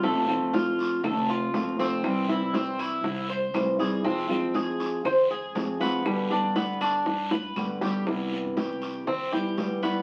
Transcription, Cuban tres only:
X:1
M:4/4
L:1/8
Q:1/4=120
K:C
V:1 name="Cuban tres"
A,2 F2 A F2 C- | C E C E2 c2 _A | C2 _A2 c A2 B,- | B, D B, D2 B2 G |
z2 G2 C G2 B, |]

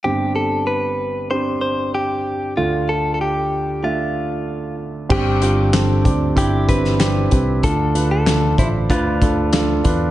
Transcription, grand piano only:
X:1
M:4/4
L:1/8
Q:1/4=95
K:Gmix
V:1 name="Grand piano"
[CDG]3 z [CDG]3 z | [A,DF]3 z [A,De]3 z | [CDG] [CDF] [CDA] [CDG] [CDE] [CDG] [CDG] [CDG] | [DFA] [DFB] [DFA] [DFc] [DFB] [DFA] [DFA] [DFB] |]
V:2 name="Grand piano" clef=bass
[G,,,G,,]8 | [D,,D,]8 | G,,3 z4 z | D,3 z4 z |]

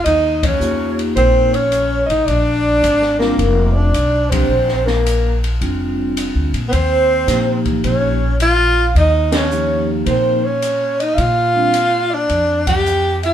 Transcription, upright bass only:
X:1
M:4/4
L:1/8
Q:"Swing" 1/4=108
K:Bb
V:1 name="Upright bass" clef=bass
E,,2 =E,,2 B,,,3 A,,, | B,,,2 _A,,,2 F,,,2 _C,,2 | B,,,4 F,,,2- (3F,,, D,, B,, | E,,2 B,,2 B,,,4 |
E,,4 B,,4 | B,,4 F,,4 |]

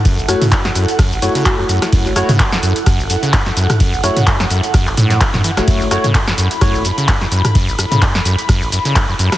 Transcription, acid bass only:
X:1
M:4/4
L:1/16
Q:"Swing 16ths" 1/4=128
K:F#m
V:1 name="Acid bass" clef=bass
F,, F,,, F,, C, F,, F,, F,, z F,, F,,, F,, C, F,, F,, F,, z | F,, F,,, F,, C, F,, F,, F,, z F,, F,,, F,, C, F,, F,, F,, z | F,, F,,, F,, C, F,, F,, F,, z F,, F,,, A,,2 F,, F,, E, F,,, | F,, F,,, F,, C, F,, F,, F,, z F,, F,,, F,, C, F,, F,, F,, z |
F,, F,,, F,, C, F,, F,, F,, z F,, F,,, F,, C, F,, F,, F,, z |]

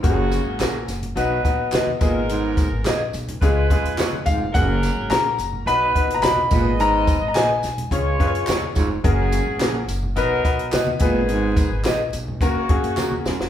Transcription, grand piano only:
X:1
M:4/4
L:1/16
Q:1/4=107
K:F#
V:1 name="Grand piano"
z16 | z12 z2 e2 | f4 a4 b3- b/2 a/2 b4 | a3- a/2 a/2 g8 z4 |
z16 | z16 |]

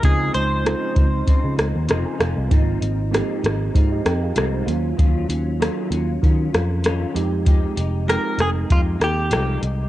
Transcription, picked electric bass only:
X:1
M:4/4
L:1/16
Q:"Swing 16ths" 1/4=97
K:Ab
V:1 name="Picked electric bass" clef=bass
D,,2 D,,3 z D,,2 z D, D,, E,, F,,, z F,,, C,, | A,,,2 A,,,3 z A,,,2 A,,2 F,,2 C,,2 E,,2 | E,,2 E,,3 z E,,2 E,2 F,,4 F,,2- | F,,2 F,,,3 z F,,,2 F,,2 E,,2 C,,2 C,,2 |]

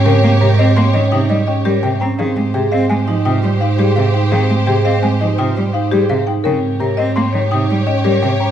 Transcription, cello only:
X:1
M:6/4
L:1/8
Q:1/4=169
K:Ab
V:1 name="Cello" clef=bass
D, B, C, C B, E, C, G, z G, C, C | E, A, C, C A, F, C, G, z G, C, z | E, A, C, C A, F, C, G, z G, C, z | D, z C, C B, E, C, G, z G, C, z |]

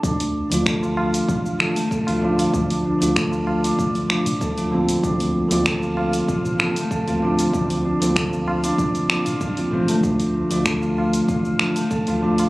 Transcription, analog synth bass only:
X:1
M:4/4
L:1/16
Q:1/4=96
K:Bblyd
V:1 name="Analog synth bass" clef=bass
D,,3 D,,4- D,, A,,,4- A,,, D,,3 | D,,3 D,,4- D,, z4 D,,4 | D,,3 D,,4- D,, A,,,4- A,,, D,,3 | D,,3 D,,4- D,, z4 C,, z A,,, A,,, |
D,,3 D,,4- D,, A,,,4- A,,, D,,3 |]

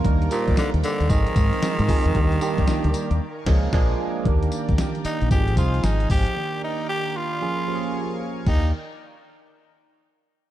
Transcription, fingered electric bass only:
X:1
M:4/4
L:1/16
Q:"Swing 16ths" 1/4=114
K:Eb
V:1 name="Fingered electric bass" clef=bass
E,,2 z D,, z E,, z E,, A,,, z A,, z2 A,, z _F,, | E,,2 z E,, z D,, z E,, z2 _D,,2 B,,,2 z2 | E,,2 z D,, z3 B,,, A,,,2 C,,2 A,,,2 A,,, z | z16 |
E,,2 z12 z2 |]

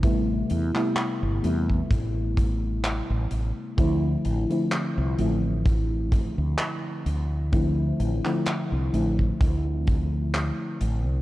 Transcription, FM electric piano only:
X:1
M:4/4
L:1/16
Q:"Swing 16ths" 1/4=64
K:Ddor
V:1 name="FM electric piano"
[C,G,A,B,E]3 [C,G,A,B,E]3 [C,G,A,B,E]8- [C,G,A,B,E]2 | [D,F,A,CE]3 [D,F,A,CE]3 [D,F,A,CE]8- [D,F,A,CE]2 | [D,F,A,CE]3 [D,F,A,CE]3 [D,F,A,CE]8- [D,F,A,CE]2 |]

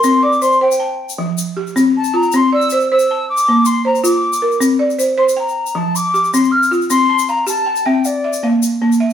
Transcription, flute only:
X:1
M:12/8
L:1/8
Q:3/8=105
K:Cmix
V:1 name="Flute"
c' d' c' g3 z4 a b | c' e'2 e'2 d'2 c' b d'3 | z3 c' b2 a d'2 c' f' z | c'2 b a2 g d2 z4 |]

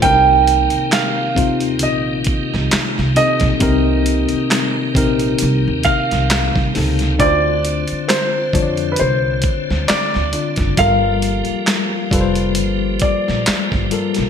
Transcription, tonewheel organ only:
X:1
M:4/4
L:1/8
Q:"Swing 16ths" 1/4=67
K:Cdor
V:1 name="Tonewheel organ"
[E,B,CG]8- | [E,B,CG]8 | [D,CF]8 | [F,B,G]8 |]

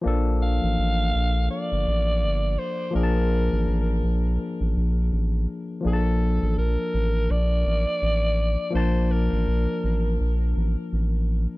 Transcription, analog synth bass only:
X:1
M:4/4
L:1/16
Q:"Swing 16ths" 1/4=83
K:Bb
V:1 name="Analog synth bass" clef=bass
B,,,3 A,,, A,,,2 B,,,2 z G,,, A,,,2 G,,,2 z2 | B,,,3 A,,, A,,,2 B,,,2 z A,,, B,,,2 A,,,2 z2 | B,,,3 A,,, B,,, z A,,,2 B,,,2 A,,, z A,,,3 z | B,,,3 A,,, B,,, z A,,,2 B,,,2 A,,, z A,,,3 z |]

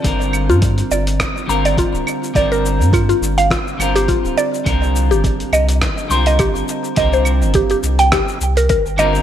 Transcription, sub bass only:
X:1
M:4/4
L:1/16
Q:"Swing 16ths" 1/4=104
K:Gm
V:1 name="Sub bass" clef=bass
G,,,3 G,,2 z G,,,2 z2 G,,,2 z D,,, z2 | G,,,3 G,,2 z G,,,2 z2 G,,,2 z D,,, z2 | C,,3 G,,,2 z C,,2 z2 C,,2 z G,,, z2 | C,,3 G,,,2 z C,,2 z2 C,,2 z G,,,2 z |]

